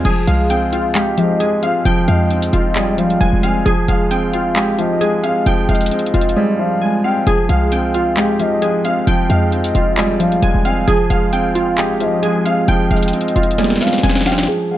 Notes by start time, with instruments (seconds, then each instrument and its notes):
0.05 808-style bass F1, grand piano F3, synth keys G#4, closed hi-hat, crash
0.27 808-style bass C2, grand piano G#3, soft synth lead F5, synth keys F5, closed hi-hat
0.50 grand piano C4, synth keys G5, closed hi-hat
0.72 grand piano F4, synth keys F4, closed hi-hat
0.95 synth keys G#3, grand piano G4, clap, closed hi-hat
1.18 synth keys F3, grand piano F3, soft synth lead D#5, closed hi-hat
1.40 grand piano G#3, synth keys G#4, closed hi-hat
1.63 grand piano C4, soft synth lead F5, synth keys F5, closed hi-hat
1.85 808-style bass F1, grand piano F3, synth keys G5, closed hi-hat
2.08 808-style bass F2, grand piano G#3, soft synth lead D#5, synth keys F5, closed hi-hat
2.30 grand piano C4, closed hi-hat
2.42 closed hi-hat
2.53 808-style bass F1, grand piano F4, synth keys F4, closed hi-hat
2.76 grand piano G3, synth keys G#3, clap, closed hi-hat
2.98 synth keys F3, grand piano F3, soft synth lead F5, closed hi-hat
3.10 closed hi-hat
3.21 808-style bass F1, grand piano G#3, synth keys G#5, closed hi-hat
3.33 808-style bass F1
3.43 grand piano C4, synth keys F5, soft synth lead G#5, closed hi-hat
3.66 808-style bass F1, grand piano F3, synth keys G#4, closed hi-hat
3.88 808-style bass F1, grand piano G#3, soft synth lead F5, synth keys F5, closed hi-hat
4.11 grand piano C4, synth keys G5, closed hi-hat
4.33 grand piano F4, synth keys F4, closed hi-hat
4.56 synth keys G#3, grand piano G4, clap, closed hi-hat
4.79 grand piano F3, synth keys F3, soft synth lead D#5, closed hi-hat
5.01 grand piano G#3, synth keys G#4, closed hi-hat
5.24 grand piano C4, synth keys F5, soft synth lead F5, closed hi-hat
5.46 808-style bass F1, grand piano F3, synth keys G5, closed hi-hat
5.69 808-style bass F1, grand piano G#3, soft synth lead D#5, synth keys F5, closed hi-hat
5.75 closed hi-hat
5.81 closed hi-hat
5.86 closed hi-hat
5.91 grand piano C4, closed hi-hat
5.99 closed hi-hat
6.06 closed hi-hat
6.14 808-style bass F1, grand piano F4, synth keys F4, closed hi-hat
6.21 closed hi-hat
6.29 closed hi-hat
6.36 grand piano G3, synth keys G#3
6.59 grand piano F3, synth keys F3, soft synth lead F5
6.82 grand piano G#3, synth keys G#5
7.04 grand piano C4, synth keys F5, soft synth lead G5
7.27 808-style bass F1, grand piano F3, synth keys G#4, closed hi-hat
7.49 808-style bass C2, grand piano G#3, soft synth lead F5, synth keys F5, closed hi-hat
7.72 grand piano C4, synth keys G5, closed hi-hat
7.94 grand piano F4, synth keys F4, closed hi-hat
8.17 synth keys G#3, grand piano G4, clap, closed hi-hat
8.39 synth keys F3, grand piano F3, soft synth lead D#5, closed hi-hat
8.62 grand piano G#3, synth keys G#4, closed hi-hat
8.85 grand piano C4, soft synth lead F5, synth keys F5, closed hi-hat
9.07 808-style bass F1, grand piano F3, synth keys G5, closed hi-hat
9.29 808-style bass F2, grand piano G#3, soft synth lead D#5, synth keys F5, closed hi-hat
9.52 grand piano C4, closed hi-hat
9.64 closed hi-hat
9.75 808-style bass F1, grand piano F4, synth keys F4, closed hi-hat
9.97 grand piano G3, synth keys G#3, clap, closed hi-hat
10.20 synth keys F3, grand piano F3, soft synth lead F5, closed hi-hat
10.32 closed hi-hat
10.42 808-style bass F1, grand piano G#3, synth keys G#5, closed hi-hat
10.54 808-style bass F1
10.65 grand piano C4, synth keys F5, soft synth lead G#5, closed hi-hat
10.88 808-style bass F1, grand piano F3, synth keys G#4, closed hi-hat
11.10 808-style bass F1, grand piano G#3, soft synth lead F5, synth keys F5, closed hi-hat
11.33 grand piano C4, synth keys G5, closed hi-hat
11.55 synth keys F4, grand piano F4, closed hi-hat
11.78 synth keys G#3, grand piano G4, clap, closed hi-hat
12.00 synth keys F3, grand piano F3, soft synth lead D#5, closed hi-hat
12.23 grand piano G#3, synth keys G#4, closed hi-hat
12.45 grand piano C4, synth keys F5, soft synth lead F5, closed hi-hat
12.68 808-style bass F1, grand piano F3, synth keys G5, closed hi-hat
12.91 808-style bass F1, grand piano G#3, soft synth lead D#5, synth keys F5, closed hi-hat
12.97 closed hi-hat
13.03 closed hi-hat
13.08 closed hi-hat
13.13 grand piano C4, closed hi-hat
13.21 closed hi-hat
13.28 closed hi-hat
13.36 808-style bass F1, grand piano F4, synth keys F4, closed hi-hat
13.43 closed hi-hat
13.51 closed hi-hat
13.58 grand piano G3, synth keys G#3, snare, closed hi-hat
13.64 snare
13.70 snare
13.76 snare
13.81 synth keys F3, grand piano F3, soft synth lead F5, snare, closed hi-hat
13.87 snare, closed hi-hat
13.93 snare, closed hi-hat
13.98 snare
14.03 808-style bass F1, grand piano G#3, synth keys G#5, snare, closed hi-hat
14.09 snare
14.15 snare
14.21 snare
14.26 grand piano C4, synth keys F5, soft synth lead G5, snare, open hi-hat
14.32 snare
14.38 snare
14.43 snare
14.49 grand piano F3, synth keys G#4
14.71 grand piano G#3, soft synth lead F5, synth keys F5